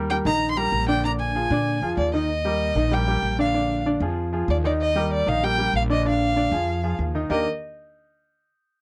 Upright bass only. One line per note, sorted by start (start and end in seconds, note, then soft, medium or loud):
0.00 0.20 D#2 loud
0.25 0.69 A#1 loud
0.72 1.45 A#1 loud
1.50 1.80 A#2 loud
1.82 1.96 F2 medium
1.97 2.70 D#2 loud
2.75 3.19 A#1 loud
3.22 3.96 A#1 loud
4.00 4.45 F2 loud
4.48 5.21 D#2 loud
5.27 5.70 A#1 loud
5.74 6.47 A#1 loud
6.51 6.96 F2 loud
6.99 7.27 D#2 medium
7.30 7.45 D#2 loud